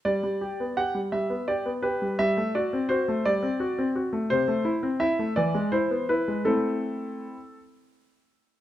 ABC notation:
X:1
M:6/8
L:1/16
Q:3/8=56
K:Dmix
V:1 name="Grand piano"
d4 f2 e2 d2 B2 | e2 d2 c2 d6 | [K:Am] c4 e2 d2 c2 B2 | A6 z6 |]
V:2 name="Grand piano"
G, G, G B, G G, G, B, G B, G G, | G, A, F C F A, G, C F C F A, | [K:Am] C, A, E C E A, E, ^G, E B, E G, | [A,CE]6 z6 |]